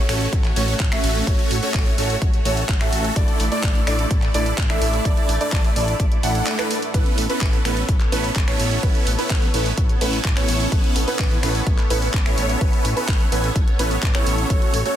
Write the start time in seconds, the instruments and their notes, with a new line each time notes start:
Already playing: analog synth pad A3 F#4 C#5
0.09 analog synth bass A1, supersaw synth A3 C#4 F#4 A4 C#5, grand piano C#5, finger snap, open hi-hat
0.21 closed hi-hat
0.33 analog synth bass A1, kick, closed hi-hat
0.44 clap, closed hi-hat
0.56 analog synth bass A1, supersaw synth A3 C#4 F#4 A4 C#5, grand piano C#5, open hi-hat
0.68 closed hi-hat
0.80 analog synth bass A1, kick, clap, closed hi-hat
0.92 analog synth bass A1, supersaw synth A3 C#4 F#4 A4 E5, grand piano E5, finger snap, closed hi-hat
1.04 analog synth bass A1, open hi-hat
1.15 closed hi-hat
1.27 analog synth bass A1, supersaw synth A3 C#4 F#4 A4 C#5, grand piano C#5, kick, closed hi-hat
1.39 closed hi-hat
1.51 analog synth bass A1, open hi-hat
1.63 supersaw synth A3 C#4 F#4 A4 C#5, grand piano C#5, closed hi-hat
1.74 analog synth bass A1, kick, clap, closed hi-hat
1.86 closed hi-hat
1.98 analog synth bass A1, supersaw synth A3 C#4 F#4 A4 C#5, grand piano C#5, open hi-hat
2.10 closed hi-hat
2.22 analog synth bass A1, kick, closed hi-hat
2.34 closed hi-hat
2.45 analog synth bass A1, supersaw synth A3 C#4 F#4 A4 C#5, grand piano C#5, open hi-hat
2.57 closed hi-hat
2.69 analog synth bass A1, kick, clap, closed hi-hat
2.81 analog synth bass A1, supersaw synth A3 C#4 F#4 A4 E5, grand piano E5, finger snap, clap, closed hi-hat
2.93 analog synth bass A1, open hi-hat
3.04 closed hi-hat
3.16 analog synth bass A1, analog synth pad A3 E4 D5, supersaw synth A3 D4 E4 A4 D5, grand piano D5, kick, closed hi-hat
3.28 closed hi-hat
3.40 analog synth bass A1, open hi-hat
3.52 supersaw synth A3 D4 E4 A4 D5, grand piano D5, closed hi-hat
3.63 analog synth bass A1, kick, clap, closed hi-hat
3.75 closed hi-hat
3.87 analog synth bass A1, supersaw synth A3 D4 E4 A4 D5, grand piano D5, finger snap, open hi-hat
3.99 closed hi-hat
4.11 analog synth bass A1, kick, closed hi-hat
4.22 clap, closed hi-hat
4.34 analog synth bass A1, supersaw synth A3 D4 E4 A4 D5, grand piano D5, open hi-hat
4.46 closed hi-hat
4.58 analog synth bass A1, kick, clap, closed hi-hat
4.70 analog synth bass A1, supersaw synth A3 D4 E4 A4 E5, grand piano E5, finger snap, closed hi-hat
4.82 analog synth bass A1, open hi-hat
4.94 closed hi-hat
5.05 analog synth bass A1, supersaw synth A3 D4 E4 D5, grand piano D5, kick, closed hi-hat
5.17 closed hi-hat
5.29 analog synth bass A1, open hi-hat
5.41 supersaw synth A3 D4 E4 A4 D5, grand piano D5, closed hi-hat
5.52 analog synth bass A1, kick, clap, closed hi-hat
5.64 closed hi-hat
5.76 analog synth bass A1, supersaw synth A3 D4 E4 A4 D5, grand piano D5, open hi-hat
5.88 closed hi-hat
6.00 analog synth bass A1, kick, closed hi-hat, swell
6.12 closed hi-hat
6.23 analog synth bass A1, supersaw synth A3 D4 E4 A4 F#5, grand piano F#5, open hi-hat
6.35 closed hi-hat
6.47 clap, closed hi-hat
6.59 supersaw synth A3 D4 E4 A4 B4, grand piano B4, finger snap, clap, closed hi-hat
6.71 open hi-hat
6.82 closed hi-hat
6.94 analog synth bass A1, supersaw synth B3 C#4 E4 A4 B4, analog synth pad B3 A4 C#5, grand piano B4, kick, closed hi-hat
7.06 closed hi-hat
7.18 analog synth bass A1, open hi-hat
7.30 supersaw synth B3 C#4 E4 A4 B4, grand piano B4, closed hi-hat
7.41 analog synth bass A1, kick, clap, closed hi-hat
7.53 closed hi-hat
7.65 analog synth bass A1, supersaw synth B3 C#4 E4 A4 B4, grand piano B4, finger snap, open hi-hat
7.77 closed hi-hat
7.89 analog synth bass A1, kick, closed hi-hat
8.00 clap, closed hi-hat
8.12 analog synth bass A1, supersaw synth B3 C#4 E4 A4 B4, grand piano B4, open hi-hat
8.24 closed hi-hat
8.36 analog synth bass A1, kick, clap, closed hi-hat
8.48 analog synth bass A1, supersaw synth B3 C#4 E4 A4 C#5, grand piano C#5, finger snap, closed hi-hat
8.60 analog synth bass A1, open hi-hat
8.71 closed hi-hat
8.83 analog synth bass A1, supersaw synth B3 C#4 E4 B4, grand piano B4, kick, closed hi-hat
8.95 closed hi-hat
9.07 analog synth bass A1, open hi-hat
9.18 supersaw synth B3 C#4 E4 A4 B4, grand piano B4, closed hi-hat
9.30 analog synth bass A1, kick, clap, closed hi-hat
9.42 closed hi-hat
9.54 analog synth bass A1, supersaw synth B3 C#4 E4 A4 B4, grand piano B4, open hi-hat
9.66 closed hi-hat
9.78 analog synth bass A1, kick, closed hi-hat
9.89 closed hi-hat
10.01 analog synth bass A1, supersaw synth B3 C#4 E4 A4 B4, grand piano B4, open hi-hat
10.13 closed hi-hat
10.25 analog synth bass A1, kick, clap, closed hi-hat
10.37 analog synth bass A1, supersaw synth B3 C#4 E4 A4 C#5, grand piano C#5, finger snap, clap, closed hi-hat
10.48 analog synth bass A1, open hi-hat
10.60 closed hi-hat
10.72 analog synth bass A1, supersaw synth C#4 E4 A4 B4, grand piano B4, kick, closed hi-hat
10.84 closed hi-hat
10.96 analog synth bass A1, open hi-hat
11.07 supersaw synth B3 C#4 E4 A4 B4, grand piano B4, closed hi-hat
11.19 analog synth bass A1, kick, clap, closed hi-hat
11.31 closed hi-hat
11.43 analog synth bass A1, supersaw synth B3 C#4 E4 A4 B4, grand piano B4, finger snap, open hi-hat
11.55 closed hi-hat
11.67 analog synth bass A1, kick, closed hi-hat
11.78 clap, closed hi-hat
11.90 analog synth bass A1, supersaw synth B3 C#4 E4 A4 B4, grand piano B4, open hi-hat
12.02 closed hi-hat
12.14 analog synth bass A1, kick, clap, closed hi-hat
12.26 analog synth bass A1, supersaw synth B3 C#4 E4 A4 C#5, grand piano C#5, finger snap, closed hi-hat
12.38 analog synth bass A1, open hi-hat
12.49 closed hi-hat
12.61 analog synth bass A1, supersaw synth C#4, grand piano B4, kick, closed hi-hat
12.73 closed hi-hat
12.85 analog synth bass A1, open hi-hat
12.97 supersaw synth B3 C#4 E4 A4 B4, grand piano B4, closed hi-hat
13.08 analog synth bass A1, kick, clap, closed hi-hat
13.20 closed hi-hat
13.32 analog synth bass A1, supersaw synth B3 C#4 E4 A4 B4, grand piano B4, open hi-hat
13.44 closed hi-hat
13.56 analog synth bass A1, kick, closed hi-hat
13.68 closed hi-hat
13.79 analog synth bass A1, supersaw synth B3 C#4 E4 A4 B4, grand piano B4, open hi-hat
13.91 closed hi-hat
14.03 analog synth bass A1, kick, clap, closed hi-hat
14.15 analog synth bass A1, supersaw synth B3 C#4 E4 A4 C#5, grand piano C#5, finger snap, clap, closed hi-hat
14.26 analog synth bass A1, open hi-hat
14.38 closed hi-hat
14.50 analog synth bass A1, supersaw synth A3 C#4 C#5, analog synth pad A3 F#4, grand piano C#5, kick, closed hi-hat
14.62 closed hi-hat
14.74 analog synth bass A1, open hi-hat
14.86 supersaw synth A3 C#4 F#4 A4 C#5, grand piano C#5, closed hi-hat